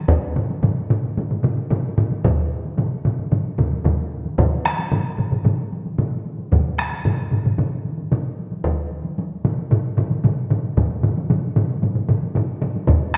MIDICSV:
0, 0, Header, 1, 2, 480
1, 0, Start_track
1, 0, Tempo, 536193
1, 81, Time_signature, 4, 2, 24, 8
1, 6320, Tempo, 529568
1, 11863, End_track
2, 0, Start_track
2, 0, Title_t, "Taiko and cinematic ensemble drums"
2, 76, Note_on_c, 9, 41, 117
2, 85, Note_on_c, 9, 48, 72
2, 166, Note_off_c, 9, 41, 0
2, 175, Note_off_c, 9, 48, 0
2, 324, Note_on_c, 9, 45, 96
2, 324, Note_on_c, 9, 47, 87
2, 413, Note_off_c, 9, 45, 0
2, 413, Note_off_c, 9, 47, 0
2, 448, Note_on_c, 9, 48, 56
2, 538, Note_off_c, 9, 48, 0
2, 562, Note_on_c, 9, 47, 94
2, 565, Note_on_c, 9, 48, 69
2, 566, Note_on_c, 9, 45, 88
2, 652, Note_off_c, 9, 47, 0
2, 655, Note_off_c, 9, 48, 0
2, 656, Note_off_c, 9, 45, 0
2, 807, Note_on_c, 9, 45, 96
2, 808, Note_on_c, 9, 47, 88
2, 897, Note_off_c, 9, 45, 0
2, 898, Note_off_c, 9, 47, 0
2, 932, Note_on_c, 9, 48, 53
2, 1022, Note_off_c, 9, 48, 0
2, 1050, Note_on_c, 9, 48, 67
2, 1051, Note_on_c, 9, 45, 70
2, 1052, Note_on_c, 9, 47, 66
2, 1140, Note_off_c, 9, 48, 0
2, 1141, Note_off_c, 9, 45, 0
2, 1141, Note_off_c, 9, 47, 0
2, 1169, Note_on_c, 9, 45, 65
2, 1173, Note_on_c, 9, 47, 65
2, 1259, Note_off_c, 9, 45, 0
2, 1262, Note_off_c, 9, 47, 0
2, 1287, Note_on_c, 9, 45, 102
2, 1291, Note_on_c, 9, 47, 101
2, 1376, Note_off_c, 9, 45, 0
2, 1381, Note_off_c, 9, 47, 0
2, 1412, Note_on_c, 9, 48, 51
2, 1501, Note_off_c, 9, 48, 0
2, 1525, Note_on_c, 9, 45, 100
2, 1532, Note_on_c, 9, 47, 96
2, 1536, Note_on_c, 9, 48, 68
2, 1615, Note_off_c, 9, 45, 0
2, 1621, Note_off_c, 9, 47, 0
2, 1625, Note_off_c, 9, 48, 0
2, 1770, Note_on_c, 9, 45, 98
2, 1771, Note_on_c, 9, 47, 95
2, 1859, Note_off_c, 9, 45, 0
2, 1860, Note_off_c, 9, 47, 0
2, 1894, Note_on_c, 9, 48, 51
2, 1983, Note_off_c, 9, 48, 0
2, 2010, Note_on_c, 9, 41, 100
2, 2010, Note_on_c, 9, 45, 102
2, 2012, Note_on_c, 9, 47, 92
2, 2016, Note_on_c, 9, 48, 75
2, 2099, Note_off_c, 9, 41, 0
2, 2100, Note_off_c, 9, 45, 0
2, 2101, Note_off_c, 9, 47, 0
2, 2106, Note_off_c, 9, 48, 0
2, 2375, Note_on_c, 9, 48, 53
2, 2464, Note_off_c, 9, 48, 0
2, 2489, Note_on_c, 9, 47, 87
2, 2490, Note_on_c, 9, 45, 86
2, 2495, Note_on_c, 9, 48, 67
2, 2579, Note_off_c, 9, 45, 0
2, 2579, Note_off_c, 9, 47, 0
2, 2585, Note_off_c, 9, 48, 0
2, 2730, Note_on_c, 9, 47, 90
2, 2731, Note_on_c, 9, 45, 87
2, 2820, Note_off_c, 9, 45, 0
2, 2820, Note_off_c, 9, 47, 0
2, 2855, Note_on_c, 9, 48, 55
2, 2944, Note_off_c, 9, 48, 0
2, 2968, Note_on_c, 9, 45, 97
2, 2972, Note_on_c, 9, 47, 83
2, 2974, Note_on_c, 9, 48, 64
2, 3058, Note_off_c, 9, 45, 0
2, 3062, Note_off_c, 9, 47, 0
2, 3064, Note_off_c, 9, 48, 0
2, 3206, Note_on_c, 9, 45, 95
2, 3209, Note_on_c, 9, 41, 61
2, 3211, Note_on_c, 9, 47, 99
2, 3213, Note_on_c, 9, 48, 47
2, 3295, Note_off_c, 9, 45, 0
2, 3298, Note_off_c, 9, 41, 0
2, 3300, Note_off_c, 9, 47, 0
2, 3302, Note_off_c, 9, 48, 0
2, 3331, Note_on_c, 9, 48, 48
2, 3420, Note_off_c, 9, 48, 0
2, 3443, Note_on_c, 9, 41, 73
2, 3446, Note_on_c, 9, 45, 100
2, 3449, Note_on_c, 9, 47, 97
2, 3451, Note_on_c, 9, 48, 71
2, 3532, Note_off_c, 9, 41, 0
2, 3535, Note_off_c, 9, 45, 0
2, 3538, Note_off_c, 9, 47, 0
2, 3541, Note_off_c, 9, 48, 0
2, 3811, Note_on_c, 9, 48, 52
2, 3900, Note_off_c, 9, 48, 0
2, 3923, Note_on_c, 9, 41, 103
2, 3925, Note_on_c, 9, 47, 75
2, 3927, Note_on_c, 9, 45, 87
2, 3928, Note_on_c, 9, 48, 71
2, 4012, Note_off_c, 9, 41, 0
2, 4014, Note_off_c, 9, 47, 0
2, 4017, Note_off_c, 9, 45, 0
2, 4017, Note_off_c, 9, 48, 0
2, 4165, Note_on_c, 9, 37, 59
2, 4168, Note_off_c, 9, 37, 0
2, 4168, Note_on_c, 9, 37, 65
2, 4169, Note_on_c, 9, 48, 51
2, 4257, Note_off_c, 9, 37, 0
2, 4258, Note_off_c, 9, 48, 0
2, 4289, Note_on_c, 9, 48, 56
2, 4379, Note_off_c, 9, 48, 0
2, 4401, Note_on_c, 9, 47, 93
2, 4404, Note_on_c, 9, 45, 81
2, 4404, Note_on_c, 9, 48, 61
2, 4491, Note_off_c, 9, 47, 0
2, 4494, Note_off_c, 9, 45, 0
2, 4494, Note_off_c, 9, 48, 0
2, 4640, Note_on_c, 9, 47, 62
2, 4644, Note_on_c, 9, 45, 66
2, 4644, Note_on_c, 9, 48, 52
2, 4729, Note_off_c, 9, 47, 0
2, 4734, Note_off_c, 9, 45, 0
2, 4734, Note_off_c, 9, 48, 0
2, 4760, Note_on_c, 9, 45, 68
2, 4761, Note_on_c, 9, 48, 50
2, 4763, Note_on_c, 9, 47, 64
2, 4850, Note_off_c, 9, 45, 0
2, 4851, Note_off_c, 9, 48, 0
2, 4852, Note_off_c, 9, 47, 0
2, 4876, Note_on_c, 9, 45, 95
2, 4881, Note_on_c, 9, 47, 79
2, 4883, Note_on_c, 9, 48, 61
2, 4966, Note_off_c, 9, 45, 0
2, 4970, Note_off_c, 9, 47, 0
2, 4972, Note_off_c, 9, 48, 0
2, 5123, Note_on_c, 9, 48, 55
2, 5212, Note_off_c, 9, 48, 0
2, 5243, Note_on_c, 9, 48, 45
2, 5332, Note_off_c, 9, 48, 0
2, 5355, Note_on_c, 9, 45, 84
2, 5358, Note_on_c, 9, 47, 83
2, 5361, Note_on_c, 9, 48, 59
2, 5444, Note_off_c, 9, 45, 0
2, 5448, Note_off_c, 9, 47, 0
2, 5451, Note_off_c, 9, 48, 0
2, 5598, Note_on_c, 9, 48, 43
2, 5688, Note_off_c, 9, 48, 0
2, 5716, Note_on_c, 9, 48, 47
2, 5805, Note_off_c, 9, 48, 0
2, 5833, Note_on_c, 9, 45, 84
2, 5838, Note_on_c, 9, 41, 90
2, 5838, Note_on_c, 9, 48, 62
2, 5841, Note_on_c, 9, 47, 78
2, 5923, Note_off_c, 9, 45, 0
2, 5927, Note_off_c, 9, 41, 0
2, 5928, Note_off_c, 9, 48, 0
2, 5930, Note_off_c, 9, 47, 0
2, 6073, Note_on_c, 9, 37, 64
2, 6077, Note_on_c, 9, 48, 37
2, 6080, Note_off_c, 9, 37, 0
2, 6080, Note_on_c, 9, 37, 62
2, 6166, Note_off_c, 9, 48, 0
2, 6169, Note_off_c, 9, 37, 0
2, 6198, Note_on_c, 9, 48, 46
2, 6288, Note_off_c, 9, 48, 0
2, 6312, Note_on_c, 9, 47, 91
2, 6314, Note_on_c, 9, 45, 81
2, 6315, Note_on_c, 9, 48, 63
2, 6403, Note_off_c, 9, 47, 0
2, 6405, Note_off_c, 9, 45, 0
2, 6406, Note_off_c, 9, 48, 0
2, 6549, Note_on_c, 9, 47, 64
2, 6557, Note_on_c, 9, 48, 46
2, 6560, Note_on_c, 9, 45, 68
2, 6640, Note_off_c, 9, 47, 0
2, 6648, Note_off_c, 9, 48, 0
2, 6651, Note_off_c, 9, 45, 0
2, 6673, Note_on_c, 9, 48, 48
2, 6676, Note_on_c, 9, 47, 65
2, 6679, Note_on_c, 9, 45, 68
2, 6764, Note_off_c, 9, 48, 0
2, 6766, Note_off_c, 9, 47, 0
2, 6770, Note_off_c, 9, 45, 0
2, 6792, Note_on_c, 9, 48, 54
2, 6795, Note_on_c, 9, 47, 84
2, 6797, Note_on_c, 9, 45, 93
2, 6883, Note_off_c, 9, 48, 0
2, 6886, Note_off_c, 9, 47, 0
2, 6888, Note_off_c, 9, 45, 0
2, 7037, Note_on_c, 9, 48, 47
2, 7128, Note_off_c, 9, 48, 0
2, 7156, Note_on_c, 9, 48, 46
2, 7247, Note_off_c, 9, 48, 0
2, 7275, Note_on_c, 9, 48, 59
2, 7278, Note_on_c, 9, 47, 85
2, 7283, Note_on_c, 9, 45, 97
2, 7366, Note_off_c, 9, 48, 0
2, 7369, Note_off_c, 9, 47, 0
2, 7373, Note_off_c, 9, 45, 0
2, 7523, Note_on_c, 9, 48, 42
2, 7614, Note_off_c, 9, 48, 0
2, 7639, Note_on_c, 9, 48, 46
2, 7730, Note_off_c, 9, 48, 0
2, 7757, Note_on_c, 9, 41, 93
2, 7761, Note_on_c, 9, 48, 61
2, 7848, Note_off_c, 9, 41, 0
2, 7851, Note_off_c, 9, 48, 0
2, 8003, Note_on_c, 9, 48, 41
2, 8093, Note_off_c, 9, 48, 0
2, 8121, Note_on_c, 9, 48, 49
2, 8212, Note_off_c, 9, 48, 0
2, 8242, Note_on_c, 9, 48, 66
2, 8333, Note_off_c, 9, 48, 0
2, 8484, Note_on_c, 9, 45, 89
2, 8484, Note_on_c, 9, 47, 90
2, 8484, Note_on_c, 9, 48, 51
2, 8574, Note_off_c, 9, 48, 0
2, 8575, Note_off_c, 9, 45, 0
2, 8575, Note_off_c, 9, 47, 0
2, 8604, Note_on_c, 9, 48, 50
2, 8694, Note_off_c, 9, 48, 0
2, 8719, Note_on_c, 9, 48, 62
2, 8723, Note_on_c, 9, 47, 91
2, 8727, Note_on_c, 9, 45, 98
2, 8810, Note_off_c, 9, 48, 0
2, 8814, Note_off_c, 9, 47, 0
2, 8818, Note_off_c, 9, 45, 0
2, 8964, Note_on_c, 9, 48, 59
2, 8965, Note_on_c, 9, 45, 95
2, 8967, Note_on_c, 9, 47, 96
2, 9055, Note_off_c, 9, 48, 0
2, 9056, Note_off_c, 9, 45, 0
2, 9057, Note_off_c, 9, 47, 0
2, 9083, Note_on_c, 9, 48, 57
2, 9174, Note_off_c, 9, 48, 0
2, 9205, Note_on_c, 9, 47, 91
2, 9206, Note_on_c, 9, 48, 76
2, 9209, Note_on_c, 9, 45, 86
2, 9296, Note_off_c, 9, 47, 0
2, 9297, Note_off_c, 9, 48, 0
2, 9300, Note_off_c, 9, 45, 0
2, 9442, Note_on_c, 9, 47, 82
2, 9445, Note_on_c, 9, 48, 54
2, 9449, Note_on_c, 9, 45, 92
2, 9533, Note_off_c, 9, 47, 0
2, 9535, Note_off_c, 9, 48, 0
2, 9539, Note_off_c, 9, 45, 0
2, 9568, Note_on_c, 9, 48, 54
2, 9658, Note_off_c, 9, 48, 0
2, 9684, Note_on_c, 9, 41, 79
2, 9686, Note_on_c, 9, 45, 88
2, 9688, Note_on_c, 9, 47, 88
2, 9690, Note_on_c, 9, 48, 75
2, 9774, Note_off_c, 9, 41, 0
2, 9777, Note_off_c, 9, 45, 0
2, 9778, Note_off_c, 9, 47, 0
2, 9781, Note_off_c, 9, 48, 0
2, 9922, Note_on_c, 9, 47, 90
2, 9929, Note_on_c, 9, 48, 56
2, 9930, Note_on_c, 9, 45, 88
2, 10013, Note_off_c, 9, 47, 0
2, 10020, Note_off_c, 9, 45, 0
2, 10020, Note_off_c, 9, 48, 0
2, 10050, Note_on_c, 9, 48, 62
2, 10140, Note_off_c, 9, 48, 0
2, 10162, Note_on_c, 9, 47, 86
2, 10163, Note_on_c, 9, 48, 74
2, 10166, Note_on_c, 9, 45, 86
2, 10253, Note_off_c, 9, 47, 0
2, 10253, Note_off_c, 9, 48, 0
2, 10257, Note_off_c, 9, 45, 0
2, 10400, Note_on_c, 9, 47, 94
2, 10406, Note_on_c, 9, 45, 85
2, 10406, Note_on_c, 9, 48, 57
2, 10491, Note_off_c, 9, 47, 0
2, 10496, Note_off_c, 9, 45, 0
2, 10497, Note_off_c, 9, 48, 0
2, 10526, Note_on_c, 9, 48, 59
2, 10617, Note_off_c, 9, 48, 0
2, 10636, Note_on_c, 9, 47, 63
2, 10644, Note_on_c, 9, 48, 68
2, 10645, Note_on_c, 9, 45, 69
2, 10727, Note_off_c, 9, 47, 0
2, 10734, Note_off_c, 9, 48, 0
2, 10735, Note_off_c, 9, 45, 0
2, 10755, Note_on_c, 9, 47, 58
2, 10763, Note_on_c, 9, 45, 64
2, 10846, Note_off_c, 9, 47, 0
2, 10854, Note_off_c, 9, 45, 0
2, 10876, Note_on_c, 9, 47, 91
2, 10885, Note_on_c, 9, 45, 90
2, 10886, Note_on_c, 9, 48, 57
2, 10966, Note_off_c, 9, 47, 0
2, 10976, Note_off_c, 9, 45, 0
2, 10977, Note_off_c, 9, 48, 0
2, 11005, Note_on_c, 9, 48, 51
2, 11095, Note_off_c, 9, 48, 0
2, 11116, Note_on_c, 9, 47, 88
2, 11123, Note_on_c, 9, 48, 69
2, 11124, Note_on_c, 9, 45, 100
2, 11207, Note_off_c, 9, 47, 0
2, 11214, Note_off_c, 9, 48, 0
2, 11215, Note_off_c, 9, 45, 0
2, 11356, Note_on_c, 9, 47, 83
2, 11359, Note_on_c, 9, 45, 101
2, 11366, Note_on_c, 9, 48, 46
2, 11447, Note_off_c, 9, 47, 0
2, 11450, Note_off_c, 9, 45, 0
2, 11457, Note_off_c, 9, 48, 0
2, 11483, Note_on_c, 9, 48, 57
2, 11573, Note_off_c, 9, 48, 0
2, 11596, Note_on_c, 9, 45, 92
2, 11598, Note_on_c, 9, 47, 85
2, 11599, Note_on_c, 9, 41, 94
2, 11604, Note_on_c, 9, 48, 72
2, 11687, Note_off_c, 9, 45, 0
2, 11688, Note_off_c, 9, 47, 0
2, 11689, Note_off_c, 9, 41, 0
2, 11695, Note_off_c, 9, 48, 0
2, 11832, Note_on_c, 9, 37, 71
2, 11863, Note_off_c, 9, 37, 0
2, 11863, End_track
0, 0, End_of_file